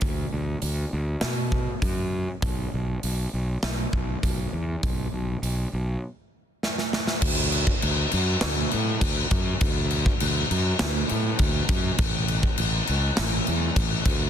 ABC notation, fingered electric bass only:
X:1
M:4/4
L:1/8
Q:1/4=100
K:Dlyd
V:1 name="Fingered electric bass" clef=bass
D,, D,, D,, D,, B,,2 F,,2 | B,,, B,,, B,,, B,,, B,,, B,,, B,,, E,, | B,,, B,,, B,,, B,,, z4 | D,,2 D,, F,, D,, A,, D,, F,, |
D,,2 D,, F,, D,, A,, D,, F,, | A,,,2 A,,, C,, A,,, E,, A,,, D,, |]